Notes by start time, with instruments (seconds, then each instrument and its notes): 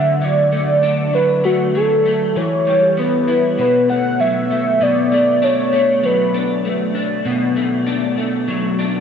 Already playing: clean electric guitar D3 F#3 A3 D4, soft synth lead E5
0.22 clean electric guitar F#3, soft synth lead D5
0.52 clean electric guitar A3
0.83 clean electric guitar D4
1.13 clean electric guitar F#3, soft synth lead B4
1.44 clean electric guitar A3, soft synth lead F#4
1.75 clean electric guitar F#3, soft synth lead A4
2.06 clean electric guitar A3
2.36 clean electric guitar E3, soft synth lead C#5
2.67 clean electric guitar G3
2.97 clean electric guitar B3, soft synth lead B4
3.28 clean electric guitar E4
3.59 clean electric guitar B2, soft synth lead B4
3.89 clean electric guitar A3, soft synth lead F#5
4.20 clean electric guitar F#3, soft synth lead E5
4.51 clean electric guitar A3
4.81 clean electric guitar B2, soft synth lead D5
5.12 clean electric guitar A3
5.42 clean electric guitar D4, soft synth lead C#5
5.73 clean electric guitar A3
6.03 clean electric guitar F#3, soft synth lead B4
6.34 clean electric guitar D4
6.65 clean electric guitar A3
6.95 clean electric guitar D4
7.25 clean electric guitar B2
7.56 clean electric guitar A3
7.87 clean electric guitar D4
8.17 clean electric guitar A3
8.48 clean electric guitar F#3
8.79 clean electric guitar D4